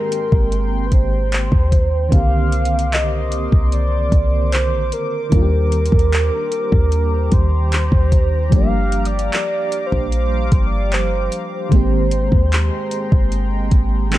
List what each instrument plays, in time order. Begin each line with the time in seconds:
Already playing: fm electric piano D#3 G#3 A#3 C4 G4, analog synth pad G#3 G5 A#5 C6, soft synth lead A#4
0.12 closed hi-hat
0.32 808-style bass G1, kick
0.52 closed hi-hat
0.86 soft synth lead B4
0.92 808-style bass G#1, soft synth lead C5, kick, closed hi-hat
1.32 clap, closed hi-hat
1.52 808-style bass D#2, kick
1.72 kick, closed hi-hat
2.09 808-style bass C2, fm electric piano D#3 A#3 C4, analog synth pad A#4 C5 C6 D6, kick, closed hi-hat
2.13 fm electric piano D3 G4, soft synth lead F5
2.52 closed hi-hat
2.65 closed hi-hat
2.79 closed hi-hat
2.93 soft synth lead D#5, clap, closed hi-hat
3.32 closed hi-hat
3.52 808-style bass C2, kick
3.72 soft synth lead D5, closed hi-hat
4.12 808-style bass C2, kick, closed hi-hat
4.52 soft synth lead C5, clap, closed hi-hat
4.72 808-style bass A#1
4.92 soft synth lead A#4, closed hi-hat
5.29 808-style bass D#2, fm electric piano D#3 G3 A#3, analog synth pad G4 A#5, kick, closed hi-hat
5.34 fm electric piano D4 F4
5.42 fm electric piano G4
5.72 closed hi-hat
5.86 closed hi-hat
5.92 808-style bass D#2, kick
5.99 closed hi-hat
6.13 clap, closed hi-hat
6.52 closed hi-hat
6.72 808-style bass D#2, kick
6.92 closed hi-hat
7.32 808-style bass D#2, soft synth lead C5, kick, closed hi-hat
7.72 clap, closed hi-hat
7.92 808-style bass D#2, kick
8.12 kick, closed hi-hat
8.49 808-style bass G1, fm electric piano F3 G3 A3, analog synth pad F5 D6, kick, closed hi-hat
8.53 fm electric piano D4 G4, soft synth lead F5
8.59 fm electric piano A#3
8.92 closed hi-hat
9.05 soft synth lead D5, closed hi-hat
9.19 closed hi-hat
9.33 soft synth lead D5, clap, closed hi-hat
9.72 closed hi-hat
9.86 soft synth lead C5
9.92 808-style bass A#1, kick
10.12 soft synth lead C5, closed hi-hat
10.52 808-style bass G1, kick, closed hi-hat
10.66 soft synth lead D5
10.92 soft synth lead C5, clap, closed hi-hat
11.32 closed hi-hat
11.53 soft synth lead C5
11.69 808-style bass G#1, fm electric piano D#3 G#3 A#3, analog synth pad G#3 G5 A#5 C6, kick, closed hi-hat
11.74 fm electric piano C4 G4
12.11 closed hi-hat
12.32 808-style bass D#2, kick
12.52 clap, closed hi-hat
12.91 closed hi-hat
13.12 808-style bass G1, kick
13.32 closed hi-hat
13.71 808-style bass G#1, kick, closed hi-hat
14.11 fm electric piano D#3 G#3 A#3 C4 D4, clap, closed hi-hat